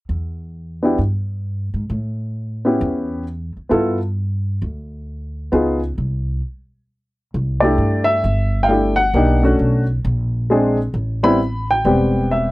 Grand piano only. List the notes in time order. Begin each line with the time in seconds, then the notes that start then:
0.83 B3 D4 E4 G4
2.65 B3 C#4 E4 G4
3.69 B3 E4 F4 A4
5.52 B3 D#4 F4 G#4
7.60 A3 D4 E4 G4 D5
8.04 E5
8.63 F5 G5
8.69 A3 D4 E4 G4
8.96 F#5
9.14 A#3 D4 D#4 G4
9.43 A3 C#4 D4 F#4
10.50 G#3 C4 D4 G#4
11.23 G3 B3 C4 E4 B5
11.71 G5
11.85 G3 B3 C4 G4
12.31 E5